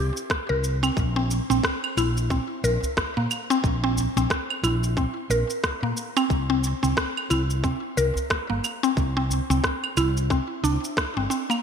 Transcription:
Already playing: G4
0.17 shaker
0.30 kick, cross-stick, shaker
0.49 C2 A#4
0.64 shaker
0.83 C4, claves, shaker
0.97 A#1, kick, shaker
1.16 C4
1.31 shaker
1.50 A#1 C4, shaker
1.64 kick, cross-stick, shaker
1.84 claves
1.97 A#1 E4, claves, shaker
2.17 shaker
2.30 C4, kick, shaker
2.64 A#1 A#4, shaker
2.83 udu, shaker
2.97 kick, cross-stick, udu, shaker
3.17 A#2 A#3
3.31 claves, shaker
3.50 C4, shaker
3.64 A#1, kick, shaker
3.84 C4
3.97 udu, shaker
4.17 A#1 C4, udu, shaker
4.30 kick, cross-stick, shaker
4.50 claves
4.63 A#1 E4, claves, shaker
4.84 shaker
4.97 C4, kick, shaker
5.30 A#1 A#4, shaker
5.50 shaker
5.64 kick, cross-stick, shaker
5.83 A#2 A#3
5.97 shaker
6.17 C4, claves, shaker
6.30 C2, kick, shaker
6.50 C4
6.64 shaker
6.83 C2 C4, shaker
6.97 kick, cross-stick, shaker
7.17 claves
7.30 C2 E4, claves, shaker
7.50 shaker
7.64 C4, kick, shaker
7.97 C2 A#4, shaker
8.15 udu, shaker
8.30 kick, cross-stick, udu, shaker
8.50 G1 A#3
8.64 claves, shaker
8.83 C4, shaker
8.97 C2, kick, shaker
9.17 C4
9.30 udu, shaker
9.50 C2 C4, udu, shaker
9.64 kick, cross-stick, shaker
9.84 claves
9.97 C2 E4, claves, shaker
10.17 shaker
10.30 C4, kick, cross-stick, shaker
10.63 C2 D4, shaker
10.84 shaker
10.97 kick, cross-stick, shaker
11.17 G1 C4
11.30 C4, shaker
11.50 A#3, claves, shaker

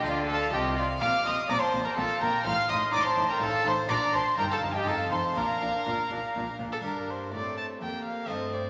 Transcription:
Already playing: D4 F4
0.04 D2 D3 D4 F4 D5 F5
0.27 A4 F5 A5
0.52 C2 C3 F4 G4 D#5 G5
0.76 F4 D5 F5
0.97 C4 D#4 G4
1.01 A#1 A#2 C4 F5 D6 F6
1.25 A#1 A#2 C4 D#5 C6 D#6
1.48 A#1 A#2 C4 D5 A#5 D6
1.59 C5 A5 C6
1.72 A#1 A#2 C4
1.83 A#4 G5 A#5
1.94 A#1 A#2 C4 A4 F5 A5
2.20 A#1 A#2 C4 A#4 G5 A#5
2.40 C4 D#4 F4
2.45 A1 A2 F5 C6 F6
2.68 A1 A2 D#4 D#5 C6 D#6
2.92 A1 A2 D#4 D5 A#5 D6
3.04 C5 A5 C6
3.16 A1 A2 D#4
3.29 A#4 G5 A#5
3.39 A1 A2 D#4 A4 F5 A5
3.64 A1 A2 D#4 C5 A5 C6
3.85 A#3 D4 F4 A#5
3.89 A#1 A#2 D5 D6
4.12 A#1 A#2 D4 C5 A5 C6
4.34 A#3 D#4 G5 A#5
4.38 G1 G2 A#4
4.49 A4 F5 A5
4.61 G1 G2 D#4
4.74 G4 D#5 G5
4.82 C4 D#4 F4 A5
4.86 F1 F2 D#4 A4 F5
5.11 F1 F2 D#4 C5 A5 C6
5.32 A#3 D4 F4 A#5
5.36 A#1 A#2 D4 A#4 F5
5.61 A#1 A#2 D4
5.85 A#1 A#2 D4
6.09 A#1 A#2 D4
6.34 A#1 A#2 D4
6.59 A#1 A#2 D4
6.72 A4
6.79 A#3 D4 G4
6.83 G2 G3 D4 A#4
7.10 C5
7.32 A2 A3 C4 A4 D5
7.57 A5
7.81 F2 A#3 G4 G5
8.04 F5
8.25 A3 C4 A4 C5 D#5
8.29 G2 A3 C4
8.53 D5

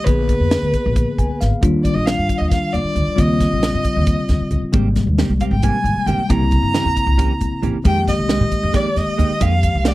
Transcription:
0.04 A#1 D3 A#3 B4, kick, closed hi-hat
0.08 B3 G#4
0.29 kick, closed hi-hat
0.40 F2
0.51 snare, closed hi-hat
0.62 D2
0.74 kick, closed hi-hat
0.86 A#1
0.96 kick, closed hi-hat
1.18 A#1 G#5, kick, closed hi-hat
1.30 muted upright bass stroke
1.41 G#1 F5, snare, closed hi-hat
1.53 muted upright bass stroke
1.61 D#2 D#3 G3 D4 F4, kick, closed hi-hat
1.84 D5, kick, closed hi-hat
1.94 A#1 D#5
2.06 F5, snare, closed hi-hat
2.19 G2
2.29 kick, closed hi-hat
2.38 D#2 D#5
2.50 F5, kick, snare, closed hi-hat
2.73 D#2 D5, closed hi-hat
2.84 muted upright bass stroke
2.95 D2, closed hi-hat
3.08 muted upright bass stroke
3.16 D#2 C#3 G3 C4 F4 D#5, kick, closed hi-hat
3.40 kick, snare, closed hi-hat
3.53 A#1
3.63 snare, closed hi-hat
3.74 G2
3.84 kick, closed hi-hat
3.96 D#2
4.06 kick, closed hi-hat
4.29 D#2, kick, snare, closed hi-hat
4.40 muted upright bass stroke
4.51 C#2, closed hi-hat
4.62 muted upright bass stroke
4.72 G#1 C3 D#3 G3 G#3 A#3 C4 G4, kick, closed hi-hat
4.96 kick, snare, closed hi-hat
5.07 D#2
5.18 D#3 A#3 C4 G4, snare, closed hi-hat
5.29 C2
5.40 A#3 C4 G4 F5, kick, closed hi-hat
5.51 G#1 G5
5.63 D#3 A#3 C4 G4 G#5, kick, closed hi-hat
5.84 G#1, closed hi-hat
5.96 muted upright bass stroke
6.06 G1 D#3 A#3 C4 G4 G5, closed hi-hat
6.18 muted upright bass stroke
6.29 C2 C#3 E3 A#3 C4 C#4 E4 G4 A#5, kick, closed hi-hat
6.51 kick, closed hi-hat
6.62 G2
6.74 E3 A#3 C#4 G4, snare, closed hi-hat
6.85 E2
6.97 kick, closed hi-hat
7.07 C2
7.18 E3 A#3 C#4 G4, kick, closed hi-hat
7.41 C2, kick, closed hi-hat
7.52 muted upright bass stroke
7.62 A#1 E3 A#3 C#4 G4, closed hi-hat
7.75 muted upright bass stroke
7.84 F2 D#3 G#3 A#3 D#4 G4 G5, kick, closed hi-hat
8.08 D#5, kick, snare, closed hi-hat
8.19 C2
8.29 G#3 A#3 D#4 G4, snare, closed hi-hat
8.40 A#2
8.51 kick, closed hi-hat
8.63 F2
8.73 G#3 A#3 D#4 G4 D5, kick, snare, closed hi-hat
8.96 F2 D#5, snare, closed hi-hat
9.07 muted upright bass stroke
9.18 D#2 G#3 A#3 D#4 G4, closed hi-hat
9.30 muted upright bass stroke
9.40 F2 G#3 A#3 D#4 G4 F5, kick, closed hi-hat
9.63 kick, closed hi-hat
9.75 C2
9.84 G#3 A#3 D#4 G4 D5, snare, closed hi-hat

